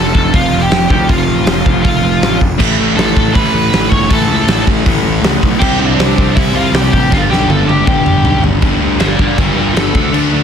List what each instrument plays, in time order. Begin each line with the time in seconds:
Already playing: picked electric bass F1, overdriven electric guitar F2 C3 F3, lead electric guitar A4
0.00 lead electric guitar A5
0.13 picked electric bass F1, overdriven electric guitar F2 C3 F3, lead electric guitar A4, kick
0.17 lead electric guitar A5
0.34 picked electric bass F1, lead electric guitar F4 F5, kick, open hi-hat
0.53 picked electric bass F1
0.61 lead electric guitar G4 G5
0.71 picked electric bass F1, snare, open hi-hat
0.89 picked electric bass D2, overdriven electric guitar F2 C3 F3, lead electric guitar G4 G5, kick
1.09 picked electric bass F1, lead electric guitar F4 F5, kick, open hi-hat
1.27 picked electric bass A1
1.46 picked electric bass F1, snare, open hi-hat
1.64 picked electric bass F1, overdriven electric guitar F2 C3 F3, kick
1.84 picked electric bass F1, lead electric guitar F4 F5, kick, open hi-hat
2.02 picked electric bass F1
2.21 picked electric bass A1, snare, open hi-hat
2.41 picked electric bass F1, kick
2.58 picked electric bass A1, overdriven electric guitar A2 E3 A3, kick, crash
2.79 picked electric bass A1
2.96 picked electric bass A1, lead electric guitar A4 A5, snare, open hi-hat
3.17 picked electric bass A1, kick
3.34 picked electric bass A1, overdriven electric guitar A2 E3 A3, lead electric guitar B4 B5, kick, open hi-hat
3.53 picked electric bass A1
3.72 picked electric bass A1, snare, open hi-hat
3.89 picked electric bass G1, lead electric guitar C#5 C#6, kick
4.09 picked electric bass A1, overdriven electric guitar A2 E3 A3, lead electric guitar A4 A5, kick, open hi-hat
4.28 picked electric bass C#2
4.47 picked electric bass A1, snare, open hi-hat
4.67 picked electric bass A1, kick
4.84 picked electric bass A1, overdriven electric guitar A2 E3 A3, kick, open hi-hat
5.03 picked electric bass A1
5.22 picked electric bass C#2, snare, open hi-hat
5.43 picked electric bass B1, kick
5.60 picked electric bass C2, overdriven electric guitar C3 G3 C4, lead electric guitar G4 G5, kick, crash
5.79 picked electric bass C2, lead electric guitar D4 D5
5.98 picked electric bass C2, snare, open hi-hat
6.18 picked electric bass C2, kick
6.35 picked electric bass C2, overdriven electric guitar C3 G3 C4, lead electric guitar E4 E5, kick, open hi-hat
6.53 picked electric bass C2, lead electric guitar F4 F5
6.72 picked electric bass C2, lead electric guitar G4 G5, snare, open hi-hat
6.92 picked electric bass A1, lead electric guitar G4 G5, kick
7.09 picked electric bass G1, overdriven electric guitar G2 D3 G3, lead electric guitar F4 F5, kick, snare
7.29 picked electric bass B1, lead electric guitar G4 G5, snare
7.47 picked electric bass G1, lead electric guitar A4 A5, high tom
7.66 picked electric bass G1, lead electric guitar G4 G5, high tom
7.85 picked electric bass G1, overdriven electric guitar G2 D3 G3, lead electric guitar G4 G5, kick, mid tom
8.04 picked electric bass G1, mid tom
8.22 picked electric bass B1, floor tom
8.42 picked electric bass G1, floor tom
8.61 picked electric bass G1, overdriven electric guitar G2 D3 G3, kick, crash
8.79 picked electric bass D2, overdriven electric guitar G2 D3 G3
8.98 picked electric bass G1, overdriven electric guitar G2 D3 G3, lead electric guitar A#4 D5, snare, crash
9.19 picked electric bass G1, overdriven electric guitar G2 D3 G3, lead electric guitar A#4 D5, kick
9.37 picked electric bass G1, overdriven electric guitar G2 D3 G3, lead electric guitar F4 A#4, kick, crash
9.55 picked electric bass G1, overdriven electric guitar G2 D3 G3, lead electric guitar F4 A#4
9.73 picked electric bass G1, overdriven electric guitar G2 D3 G3, lead electric guitar A4, crash
9.77 snare
9.92 picked electric bass D2, overdriven electric guitar D3 A3 D4, kick
10.11 picked electric bass D2, overdriven electric guitar D3 A3 D4, crash
10.29 overdriven electric guitar D3 A3 D4